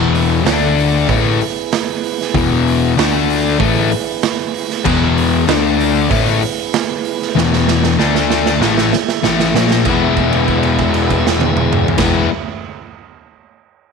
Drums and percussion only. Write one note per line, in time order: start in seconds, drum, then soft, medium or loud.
0.15 open hi-hat medium
0.46 snare loud
0.46 open hi-hat medium
0.78 open hi-hat medium
1.09 kick loud
1.09 open hi-hat medium
1.41 open hi-hat medium
1.72 snare loud
1.72 open hi-hat medium
2.04 open hi-hat medium
2.21 snare soft
2.35 kick loud
2.35 open hi-hat medium
2.67 open hi-hat medium
2.98 snare loud
2.98 open hi-hat medium
3.30 open hi-hat medium
3.60 kick loud
3.60 open hi-hat medium
3.91 open hi-hat medium
4.22 snare loud
4.22 open hi-hat medium
4.54 open hi-hat medium
4.70 snare soft
4.85 kick loud
4.85 crash loud
5.17 open hi-hat medium
5.48 snare loud
5.48 open hi-hat medium
5.80 open hi-hat medium
6.11 kick loud
6.11 open hi-hat medium
6.42 open hi-hat medium
6.73 snare loud
6.73 open hi-hat medium
7.05 open hi-hat medium
7.22 snare soft
7.38 snare medium
7.53 snare medium
7.68 snare medium
7.83 snare medium
8.00 snare medium
8.15 snare medium
8.30 snare medium
8.46 snare medium
8.62 snare medium
8.78 snare medium
8.93 snare loud
9.09 snare medium
9.24 snare loud
9.40 snare medium
9.56 snare loud
9.71 snare loud
9.85 kick loud
9.85 crash medium
10.16 kick medium
10.16 crash soft
10.33 crash soft
10.48 kick medium
10.48 crash soft
10.63 crash soft
10.78 kick medium
10.78 crash soft
10.94 crash medium
11.10 kick medium
11.10 crash medium
11.27 snare loud
11.41 high tom loud
11.57 mid tom loud
11.73 mid tom loud
11.88 floor tom loud
11.98 kick loud
11.98 snare loud
11.98 crash loud